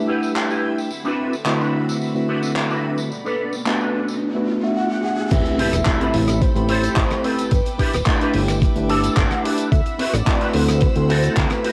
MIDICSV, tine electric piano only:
0, 0, Header, 1, 2, 480
1, 0, Start_track
1, 0, Tempo, 550459
1, 795, Time_signature, 4, 2, 24, 8
1, 10222, End_track
2, 0, Start_track
2, 0, Title_t, "Tine electric piano"
2, 0, Program_c, 0, 4
2, 0, Note_on_c, 0, 57, 85
2, 0, Note_on_c, 0, 62, 77
2, 0, Note_on_c, 0, 64, 77
2, 0, Note_on_c, 0, 67, 80
2, 0, Note_on_c, 0, 71, 94
2, 775, Note_off_c, 0, 57, 0
2, 777, Note_off_c, 0, 62, 0
2, 779, Note_off_c, 0, 64, 0
2, 781, Note_off_c, 0, 67, 0
2, 784, Note_off_c, 0, 71, 0
2, 1263, Note_on_c, 0, 50, 88
2, 1267, Note_on_c, 0, 57, 80
2, 1271, Note_on_c, 0, 60, 76
2, 1273, Note_on_c, 0, 64, 77
2, 1278, Note_on_c, 0, 66, 75
2, 1280, Note_on_c, 0, 71, 88
2, 1844, Note_off_c, 0, 50, 0
2, 1846, Note_off_c, 0, 57, 0
2, 1848, Note_off_c, 0, 60, 0
2, 1849, Note_off_c, 0, 64, 0
2, 1851, Note_off_c, 0, 66, 0
2, 1852, Note_off_c, 0, 71, 0
2, 1867, Note_on_c, 0, 50, 83
2, 1871, Note_on_c, 0, 57, 78
2, 1874, Note_on_c, 0, 60, 77
2, 1878, Note_on_c, 0, 64, 81
2, 1881, Note_on_c, 0, 66, 82
2, 1886, Note_on_c, 0, 71, 90
2, 2695, Note_off_c, 0, 50, 0
2, 2697, Note_off_c, 0, 57, 0
2, 2698, Note_off_c, 0, 60, 0
2, 2700, Note_off_c, 0, 64, 0
2, 2702, Note_off_c, 0, 66, 0
2, 2704, Note_off_c, 0, 71, 0
2, 3187, Note_on_c, 0, 57, 85
2, 3192, Note_on_c, 0, 59, 75
2, 3194, Note_on_c, 0, 62, 79
2, 3199, Note_on_c, 0, 66, 73
2, 3204, Note_on_c, 0, 71, 92
2, 3766, Note_off_c, 0, 57, 0
2, 3768, Note_off_c, 0, 59, 0
2, 3769, Note_off_c, 0, 62, 0
2, 3772, Note_off_c, 0, 66, 0
2, 3774, Note_off_c, 0, 71, 0
2, 3794, Note_on_c, 0, 57, 81
2, 3796, Note_on_c, 0, 59, 78
2, 3798, Note_on_c, 0, 62, 78
2, 3800, Note_on_c, 0, 66, 76
2, 3805, Note_on_c, 0, 71, 95
2, 4012, Note_off_c, 0, 57, 0
2, 4013, Note_off_c, 0, 59, 0
2, 4014, Note_off_c, 0, 62, 0
2, 4015, Note_off_c, 0, 66, 0
2, 4017, Note_off_c, 0, 71, 0
2, 4030, Note_on_c, 0, 57, 73
2, 4035, Note_on_c, 0, 59, 63
2, 4040, Note_on_c, 0, 62, 66
2, 4042, Note_on_c, 0, 66, 64
2, 4047, Note_on_c, 0, 76, 77
2, 4617, Note_off_c, 0, 57, 0
2, 4619, Note_off_c, 0, 59, 0
2, 4621, Note_off_c, 0, 62, 0
2, 4622, Note_off_c, 0, 66, 0
2, 4625, Note_off_c, 0, 76, 0
2, 4633, Note_on_c, 0, 57, 97
2, 4634, Note_on_c, 0, 60, 94
2, 4638, Note_on_c, 0, 64, 93
2, 4641, Note_on_c, 0, 67, 91
2, 4642, Note_on_c, 0, 71, 109
2, 5068, Note_off_c, 0, 57, 0
2, 5069, Note_off_c, 0, 60, 0
2, 5070, Note_off_c, 0, 64, 0
2, 5072, Note_off_c, 0, 67, 0
2, 5072, Note_off_c, 0, 71, 0
2, 5104, Note_on_c, 0, 57, 91
2, 5109, Note_on_c, 0, 60, 86
2, 5113, Note_on_c, 0, 64, 83
2, 5117, Note_on_c, 0, 67, 85
2, 5123, Note_on_c, 0, 83, 100
2, 5684, Note_off_c, 0, 57, 0
2, 5687, Note_off_c, 0, 60, 0
2, 5689, Note_off_c, 0, 64, 0
2, 5691, Note_off_c, 0, 67, 0
2, 5694, Note_off_c, 0, 83, 0
2, 5711, Note_on_c, 0, 57, 92
2, 5715, Note_on_c, 0, 60, 85
2, 5720, Note_on_c, 0, 64, 87
2, 5724, Note_on_c, 0, 67, 86
2, 5728, Note_on_c, 0, 83, 97
2, 6537, Note_off_c, 0, 57, 0
2, 6539, Note_off_c, 0, 60, 0
2, 6541, Note_off_c, 0, 64, 0
2, 6543, Note_off_c, 0, 67, 0
2, 6545, Note_off_c, 0, 83, 0
2, 7026, Note_on_c, 0, 57, 92
2, 7032, Note_on_c, 0, 62, 81
2, 7035, Note_on_c, 0, 64, 89
2, 7039, Note_on_c, 0, 67, 86
2, 7044, Note_on_c, 0, 71, 101
2, 7605, Note_off_c, 0, 57, 0
2, 7608, Note_off_c, 0, 62, 0
2, 7610, Note_off_c, 0, 64, 0
2, 7612, Note_off_c, 0, 67, 0
2, 7614, Note_off_c, 0, 71, 0
2, 7634, Note_on_c, 0, 57, 96
2, 7638, Note_on_c, 0, 62, 83
2, 7643, Note_on_c, 0, 64, 84
2, 7647, Note_on_c, 0, 67, 86
2, 7652, Note_on_c, 0, 71, 106
2, 8458, Note_off_c, 0, 57, 0
2, 8461, Note_off_c, 0, 62, 0
2, 8463, Note_off_c, 0, 64, 0
2, 8465, Note_off_c, 0, 67, 0
2, 8467, Note_off_c, 0, 71, 0
2, 8943, Note_on_c, 0, 57, 96
2, 8950, Note_on_c, 0, 60, 86
2, 8952, Note_on_c, 0, 64, 86
2, 8955, Note_on_c, 0, 66, 86
2, 8961, Note_on_c, 0, 71, 100
2, 9524, Note_off_c, 0, 57, 0
2, 9527, Note_off_c, 0, 60, 0
2, 9528, Note_off_c, 0, 64, 0
2, 9530, Note_off_c, 0, 66, 0
2, 9533, Note_off_c, 0, 71, 0
2, 9552, Note_on_c, 0, 57, 92
2, 9555, Note_on_c, 0, 60, 87
2, 9559, Note_on_c, 0, 64, 83
2, 9564, Note_on_c, 0, 66, 87
2, 9567, Note_on_c, 0, 69, 100
2, 10222, Note_off_c, 0, 57, 0
2, 10222, Note_off_c, 0, 60, 0
2, 10222, Note_off_c, 0, 64, 0
2, 10222, Note_off_c, 0, 66, 0
2, 10222, Note_off_c, 0, 69, 0
2, 10222, End_track
0, 0, End_of_file